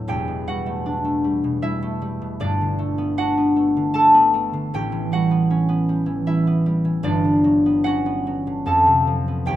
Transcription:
harp
Already playing: D2 A2 F#3 A3 B3 D4 E4 F#4 A4 D5 F#5 A5
0.08 E1 E2 G4 G5
0.28 B2
0.47 G3 F#4 F#5
0.66 A3
0.86 D4
1.05 A3
1.24 G3
1.44 B2
1.62 G3 E4 E5
1.82 A3
2.02 G3
2.22 B2
2.40 G1 G2 D4 D5
2.61 D3
2.79 A3
2.98 B3
3.17 D4 F#4 F#5
3.38 B3
3.56 A3
3.77 D3
3.94 A3 A4 A5
4.14 B3
4.34 A3
4.53 D3
4.74 A1 A2 G4 G5
4.92 E3
5.12 G3 F#4 F#5
5.31 B3
5.50 C#4
5.69 B3
5.89 G3
6.06 E3
6.26 G3 E4 E5
6.47 B3
6.66 G3
6.85 E3
7.03 G1 G2 D4 D5
7.24 D3
7.44 F#3
7.66 B3
7.84 C#4 F#4 F#5
8.06 B3
8.27 F#3
8.47 D3
8.66 F2 A4 A5
8.86 C3
9.07 F3
9.28 B3
9.46 D#1 D#2 G4 G5

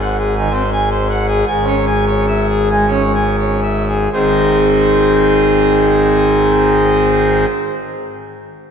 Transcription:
pipe organ
Already playing: G#1 G#2
0.01 F#5
0.18 G#4
0.36 D#3 G#5
0.50 C4 C5
0.72 G#5
0.91 C5
1.09 F#5
1.28 G#4
1.47 G#1 G#2 G#5
1.62 C#4
1.67 C#5
1.86 G#5
2.07 C#5
2.28 E5
2.50 G#4
2.71 G#3 G#5
2.87 C#4
2.92 C#5
3.15 G#5
3.39 C#5
3.62 E5
3.88 G#4
4.12 G#1 G#2 D#3 C4 D#4 G#4 C5

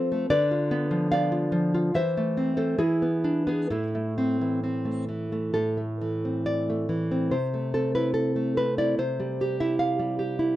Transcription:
nylon-string guitar
Already playing: F3 C4 A4 C5
0.12 A3
0.30 D3 B4 D5
0.51 F4
0.71 B3
0.91 F3
1.12 B3 D5 F5
1.32 F4
1.52 F3
1.74 F4
1.94 E3 C5 E5
2.17 A3
2.37 C4
2.57 A3 A4 C5
2.78 E3 E4 G#4
3.02 B3
3.24 D4
3.47 B3 G#4 B4
3.70 A2 E4 A4
3.95 A3
4.18 C4
4.41 E3
4.64 C4
4.85 A3
5.09 E3
5.32 A3
5.54 A2 A4
5.77 A3
6.01 E3
6.25 C4
6.46 D5
6.70 A3
6.89 E3
7.11 C4
7.31 C3 C5
7.54 A3
7.74 C4 A4
7.95 E4 B4
8.14 A4
8.36 A3
8.57 C4 B4
8.78 E4 D5
8.98 C3 C5
9.20 G3
9.41 G4
9.60 E4 E5
9.79 F5
9.99 G3
10.19 G4
10.39 E4

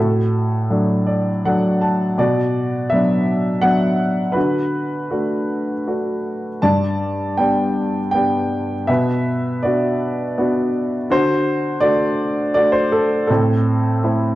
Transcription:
grand piano
Already playing: A2 A4
0.00 F#4
0.70 F#3 A3 D4
1.07 D5
1.45 F#3 A3 D4 F#5
1.81 A5
2.18 B2 F#4 D5
2.90 F#3 B3 D4 E5
3.61 F#3 B3 D4 F#5
4.32 D3 F#4 B4
5.10 A3 D4 F#4
5.87 A3 D4 F#4
6.62 G2 D5 A5
7.37 B3 D4 G4 G5
8.11 B3 D4 G4 G5
8.87 B2 B4 E5
9.63 B3 D4 F#4 D5
10.38 B3 D4 F#4
11.10 D3 F#4 C5
11.80 A3 D4 F#4 D5
12.54 A3 D4 F#4 D5
12.72 C5
12.92 A4
13.27 A2 C4 A4
14.03 A3 C4 E4

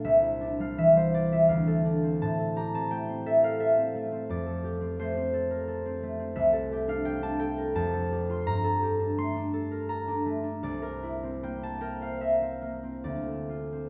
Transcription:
harp
Already playing: D4 D5
0.04 C2 E5
0.22 E4
0.41 D4
0.59 G3 F5
0.78 E3 E5
0.95 G3 C5
1.14 E4 D5
1.32 F4 E5
1.49 D2 F5
1.67 A4
1.85 D4
2.03 C4
2.21 A2 A5
2.39 A4
2.56 G4 A#5
2.74 C4 A5
2.91 A3 G5
3.09 C4
3.26 A4 E5
3.43 A#4 F5
3.59 A4 E5
3.77 C4
3.95 A3
4.12 C4
4.29 F2 D5
4.46 A4
4.64 G4
4.81 C4
4.99 A3 C5
5.17 C4
5.33 A4
5.51 A#4
5.68 A4
5.86 C4
6.03 A3
6.19 C4
6.35 C2 E5
6.53 A4
6.72 G4
6.88 D4 F5
7.05 A3 G5
7.22 D4 A5
7.40 A4 G5
7.58 A#4
7.75 F2 A5
7.94 A4
8.12 G4
8.30 F4 C6
8.46 G2 A#5
8.64 A4
8.83 G4
9.00 D4
9.18 A3 C6
9.36 D4
9.53 A4
9.71 A#4
9.89 A4 A#5
10.07 D4
10.26 A3
10.43 D4
10.63 C2 D5
10.82 A#4
11.03 E4
11.23 C4
11.43 A#3 G5
11.62 C4 A5
11.81 A#4 G5
12.01 C5 F5
12.21 A#4 E5
12.41 C4
12.61 A#3
12.83 C4
13.04 D2 D5
13.27 A4
13.49 F4
13.72 C4

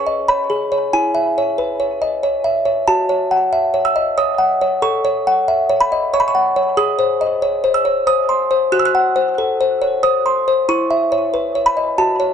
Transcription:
music box
Already playing: C#4 C#5 C#6
0.07 D#5
0.28 C#5 B5
0.50 G#4
0.72 C#5
0.93 E4 G#5
1.15 E5
1.38 C#5
1.58 B4
1.80 C#5
2.02 D#5
2.23 C#5
2.44 E5
2.65 C#5
2.88 F#4 A5
3.09 C#5
3.31 F#5
3.53 E5
3.74 C#5
3.85 E6
3.96 D#5
4.18 C#5 D#6
4.38 F#5
4.61 C#5
4.82 A4 C#6
5.05 C#5
5.27 F#5
5.48 E5
5.69 C#5
5.80 B5
5.92 D#5
6.13 C#5 C#6
6.20 B5
6.28 C#6
6.35 F#5
6.56 C#5
6.77 G#4 D#6
6.99 C5
7.21 D#5
7.42 C#5
7.64 C5
7.74 E6
7.85 C#5
8.07 C5 D#6
8.29 C6
8.51 C5
8.72 F#4 F#6
8.79 E6
8.85 F#6
8.95 F#5
9.16 C5
9.38 A4
9.61 C5
9.82 C#5
10.03 C5 D#6
10.26 C6
10.48 C5
10.69 E4 C#6
10.91 E5
11.12 C#5
11.34 B4
11.55 C#5
11.66 B5
11.77 D#5
11.98 F#4 A5
12.20 C#5

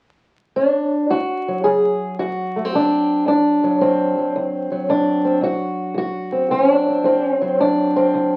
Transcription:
steel-string acoustic guitar
0.56 D4
1.10 D2 F#4
1.48 F#3
1.64 D2 G#4
2.19 D2 F#4
2.56 A3
2.65 C4
2.74 D2 D4
3.26 D2 D4
3.64 F#3
3.81 D2 C4
4.18 F#3
4.36 D2
4.71 F#3
4.89 D2 D4
5.25 C4
5.41 D2 F#4
5.94 D2 F#4
6.32 C4
6.50 D2 C#4
6.71 D4
6.88 C4
7.04 D2 C4
7.23 C#4
7.36 C4
7.42 F#3
7.60 D2 D4
7.96 C4
8.14 D2

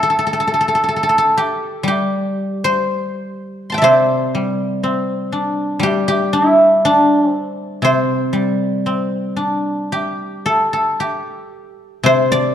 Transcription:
guzheng
Already playing: G3 D4 E4 G4
0.03 A4
0.10 A4
0.19 A4
0.27 A4
0.33 A4
0.40 A4
0.47 A4
0.54 A4
0.61 A4
0.68 A4
0.75 A4
0.84 A4
0.88 A4
0.96 A4
1.03 A4
1.09 A4
1.18 A4
1.37 G4
1.83 G3
1.88 G4
2.64 C5
3.70 A5 C6
3.74 E5 G5
3.82 C3 C5 D5
4.35 G3
4.83 C4
5.32 D4
5.79 G3 G4
6.08 G4
6.33 E4
6.85 D4
7.30 C4
7.82 C3 C5
8.33 G3
8.86 C4
9.36 D4
9.92 G4
10.46 A4
10.73 A4
11.00 G4
12.03 C3 C5
12.32 D5

